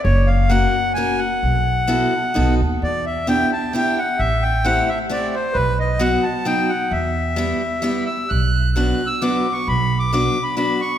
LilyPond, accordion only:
\new Staff \with { instrumentName = "Accordion" } { \time 3/4 \key e \minor \tempo 4 = 131 cis''8 f''8 fis''4 gis''8 fis''8~ | fis''2~ fis''8 r8 | d''8 e''8 g''8 a''8 g''8 fis''8 | e''8 g''8 fis''8 e''8 d''8 c''8 |
b'8 dis''8 fis''8 a''8 g''8 fis''8 | e''2~ e''8 e'''8 | \key b \minor fis'''4 \tuplet 3/2 { fis'''4 e'''8 d'''4 cis'''8 } | \tuplet 3/2 { b''4 d'''8 d'''4 b''8 } b''8 cis'''8 | }